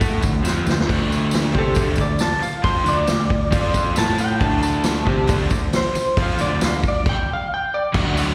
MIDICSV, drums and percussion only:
0, 0, Header, 1, 2, 480
1, 0, Start_track
1, 0, Tempo, 441176
1, 966, Time_signature, 4, 2, 24, 8
1, 9078, End_track
2, 0, Start_track
2, 0, Title_t, "Drums"
2, 10, Note_on_c, 9, 54, 77
2, 12, Note_on_c, 9, 36, 116
2, 13, Note_on_c, 9, 46, 60
2, 118, Note_off_c, 9, 54, 0
2, 120, Note_off_c, 9, 36, 0
2, 121, Note_off_c, 9, 46, 0
2, 244, Note_on_c, 9, 54, 76
2, 255, Note_on_c, 9, 36, 87
2, 353, Note_off_c, 9, 54, 0
2, 364, Note_off_c, 9, 36, 0
2, 487, Note_on_c, 9, 54, 100
2, 511, Note_on_c, 9, 38, 61
2, 596, Note_off_c, 9, 54, 0
2, 620, Note_off_c, 9, 38, 0
2, 724, Note_on_c, 9, 54, 75
2, 753, Note_on_c, 9, 38, 93
2, 833, Note_off_c, 9, 54, 0
2, 861, Note_off_c, 9, 38, 0
2, 875, Note_on_c, 9, 38, 91
2, 972, Note_on_c, 9, 36, 110
2, 975, Note_on_c, 9, 46, 61
2, 975, Note_on_c, 9, 49, 96
2, 978, Note_on_c, 9, 54, 29
2, 984, Note_off_c, 9, 38, 0
2, 1080, Note_off_c, 9, 36, 0
2, 1083, Note_off_c, 9, 46, 0
2, 1083, Note_off_c, 9, 49, 0
2, 1086, Note_off_c, 9, 54, 0
2, 1221, Note_on_c, 9, 54, 68
2, 1330, Note_off_c, 9, 54, 0
2, 1428, Note_on_c, 9, 54, 93
2, 1454, Note_on_c, 9, 46, 59
2, 1463, Note_on_c, 9, 38, 111
2, 1537, Note_off_c, 9, 54, 0
2, 1563, Note_off_c, 9, 46, 0
2, 1571, Note_off_c, 9, 38, 0
2, 1683, Note_on_c, 9, 36, 86
2, 1792, Note_off_c, 9, 36, 0
2, 1900, Note_on_c, 9, 54, 77
2, 1914, Note_on_c, 9, 46, 60
2, 1919, Note_on_c, 9, 36, 116
2, 2009, Note_off_c, 9, 54, 0
2, 2023, Note_off_c, 9, 46, 0
2, 2028, Note_off_c, 9, 36, 0
2, 2128, Note_on_c, 9, 54, 70
2, 2157, Note_on_c, 9, 36, 91
2, 2237, Note_off_c, 9, 54, 0
2, 2266, Note_off_c, 9, 36, 0
2, 2380, Note_on_c, 9, 54, 93
2, 2396, Note_on_c, 9, 46, 63
2, 2404, Note_on_c, 9, 38, 104
2, 2489, Note_off_c, 9, 54, 0
2, 2504, Note_off_c, 9, 46, 0
2, 2513, Note_off_c, 9, 38, 0
2, 2642, Note_on_c, 9, 54, 67
2, 2751, Note_off_c, 9, 54, 0
2, 2865, Note_on_c, 9, 46, 59
2, 2872, Note_on_c, 9, 36, 107
2, 2900, Note_on_c, 9, 54, 27
2, 2974, Note_off_c, 9, 46, 0
2, 2981, Note_off_c, 9, 36, 0
2, 3008, Note_off_c, 9, 54, 0
2, 3110, Note_on_c, 9, 54, 67
2, 3219, Note_off_c, 9, 54, 0
2, 3343, Note_on_c, 9, 46, 58
2, 3345, Note_on_c, 9, 54, 90
2, 3352, Note_on_c, 9, 38, 113
2, 3452, Note_off_c, 9, 46, 0
2, 3454, Note_off_c, 9, 54, 0
2, 3461, Note_off_c, 9, 38, 0
2, 3594, Note_on_c, 9, 36, 84
2, 3703, Note_off_c, 9, 36, 0
2, 3832, Note_on_c, 9, 46, 63
2, 3834, Note_on_c, 9, 36, 115
2, 3836, Note_on_c, 9, 54, 75
2, 3941, Note_off_c, 9, 46, 0
2, 3942, Note_off_c, 9, 36, 0
2, 3945, Note_off_c, 9, 54, 0
2, 4072, Note_on_c, 9, 36, 94
2, 4073, Note_on_c, 9, 54, 75
2, 4181, Note_off_c, 9, 36, 0
2, 4182, Note_off_c, 9, 54, 0
2, 4307, Note_on_c, 9, 54, 98
2, 4315, Note_on_c, 9, 46, 59
2, 4324, Note_on_c, 9, 38, 116
2, 4416, Note_off_c, 9, 54, 0
2, 4424, Note_off_c, 9, 46, 0
2, 4433, Note_off_c, 9, 38, 0
2, 4551, Note_on_c, 9, 54, 76
2, 4660, Note_off_c, 9, 54, 0
2, 4790, Note_on_c, 9, 46, 60
2, 4796, Note_on_c, 9, 36, 108
2, 4806, Note_on_c, 9, 54, 32
2, 4899, Note_off_c, 9, 46, 0
2, 4904, Note_off_c, 9, 36, 0
2, 4915, Note_off_c, 9, 54, 0
2, 5034, Note_on_c, 9, 54, 75
2, 5143, Note_off_c, 9, 54, 0
2, 5261, Note_on_c, 9, 46, 63
2, 5264, Note_on_c, 9, 54, 104
2, 5270, Note_on_c, 9, 38, 108
2, 5370, Note_off_c, 9, 46, 0
2, 5372, Note_off_c, 9, 54, 0
2, 5378, Note_off_c, 9, 38, 0
2, 5513, Note_on_c, 9, 36, 87
2, 5622, Note_off_c, 9, 36, 0
2, 5735, Note_on_c, 9, 46, 68
2, 5756, Note_on_c, 9, 36, 116
2, 5757, Note_on_c, 9, 54, 81
2, 5844, Note_off_c, 9, 46, 0
2, 5865, Note_off_c, 9, 36, 0
2, 5866, Note_off_c, 9, 54, 0
2, 5987, Note_on_c, 9, 54, 75
2, 5993, Note_on_c, 9, 36, 94
2, 6096, Note_off_c, 9, 54, 0
2, 6102, Note_off_c, 9, 36, 0
2, 6231, Note_on_c, 9, 46, 63
2, 6237, Note_on_c, 9, 54, 95
2, 6240, Note_on_c, 9, 38, 109
2, 6340, Note_off_c, 9, 46, 0
2, 6346, Note_off_c, 9, 54, 0
2, 6348, Note_off_c, 9, 38, 0
2, 6475, Note_on_c, 9, 54, 75
2, 6584, Note_off_c, 9, 54, 0
2, 6711, Note_on_c, 9, 46, 62
2, 6714, Note_on_c, 9, 36, 114
2, 6718, Note_on_c, 9, 54, 29
2, 6820, Note_off_c, 9, 46, 0
2, 6823, Note_off_c, 9, 36, 0
2, 6826, Note_off_c, 9, 54, 0
2, 6947, Note_on_c, 9, 54, 70
2, 7055, Note_off_c, 9, 54, 0
2, 7192, Note_on_c, 9, 46, 55
2, 7194, Note_on_c, 9, 54, 97
2, 7200, Note_on_c, 9, 38, 113
2, 7300, Note_off_c, 9, 46, 0
2, 7303, Note_off_c, 9, 54, 0
2, 7309, Note_off_c, 9, 38, 0
2, 7437, Note_on_c, 9, 36, 88
2, 7440, Note_on_c, 9, 54, 29
2, 7546, Note_off_c, 9, 36, 0
2, 7549, Note_off_c, 9, 54, 0
2, 7678, Note_on_c, 9, 49, 107
2, 7680, Note_on_c, 9, 36, 111
2, 7787, Note_off_c, 9, 49, 0
2, 7789, Note_off_c, 9, 36, 0
2, 8640, Note_on_c, 9, 49, 127
2, 8644, Note_on_c, 9, 36, 115
2, 8651, Note_on_c, 9, 54, 28
2, 8749, Note_off_c, 9, 49, 0
2, 8752, Note_off_c, 9, 36, 0
2, 8759, Note_off_c, 9, 54, 0
2, 8890, Note_on_c, 9, 46, 63
2, 8890, Note_on_c, 9, 54, 66
2, 8999, Note_off_c, 9, 46, 0
2, 8999, Note_off_c, 9, 54, 0
2, 9078, End_track
0, 0, End_of_file